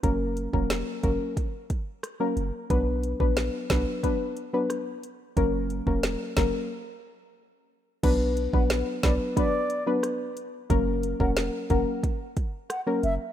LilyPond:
<<
  \new Staff \with { instrumentName = "Flute" } { \time 4/4 \key b \minor \tempo 4 = 90 r1 | r1 | r1 | r8. fis''16 r8 d''16 r16 d''8. r4 r16 |
r8. fis''16 r8 fis''16 r4 r16 fis''16 r16 e''16 r16 | }
  \new Staff \with { instrumentName = "Synth pluck" } { \time 4/4 \key b \minor <fis ais cis' ais'>8. <fis ais cis' ais'>8. <fis ais cis' ais'>8 r4 r16 <fis ais cis' ais'>16 r8 | <fis b d' b'>8. <fis b d' b'>8. <fis b d' b'>8 <fis b d' b'>16 r8 <fis b d' b'>16 r4 | <fis ais cis' ais'>8. <fis ais cis' ais'>8. <fis ais cis' ais'>8 r2 | <fis b d' b'>8. <fis b d' b'>8. <fis b d' b'>8 <fis b d' b'>16 r8 <fis b d' b'>16 r4 |
<fis ais cis' ais'>8. <fis ais cis' ais'>8. <fis ais cis' ais'>8 r4 r16 <fis ais cis' ais'>16 r8 | }
  \new Staff \with { instrumentName = "808-style bass" } { \clef bass \time 4/4 \key b \minor fis,,8. e,,8 r16 fis,,16 r4. r16 fis,,16 r16 | b,,8. ais,,8 r16 b,,16 r2 r16 | fis,,8. e,,8 r16 fis,,16 r2 r16 | b,,8. ais,,8 r16 b,,16 r2 r16 |
fis,,8. e,,8 r16 fis,,16 r4. r16 fis,,16 r16 | }
  \new DrumStaff \with { instrumentName = "Drums" } \drummode { \time 4/4 <hh bd>8 hh16 bd16 <hh sn>8 <hh bd>8 <hh bd>8 <hh bd>8 <hh ss>8 hh8 | <hh bd>8 hh16 bd16 <hh sn>8 <hh bd sn>8 <hh bd>8 hh8 <hh ss>8 hh8 | <hh bd>8 hh16 bd16 <hh sn>8 <hh bd sn>8 r4 r4 | <cymc hh bd>8 hh16 bd16 <hh sn>8 <hh bd sn>8 <hh bd>8 hh8 <hh ss>8 hh8 |
<hh bd>8 hh16 bd16 <hh sn>8 <hh bd>8 <hh bd>8 <hh bd>8 <hh ss>8 hh8 | }
>>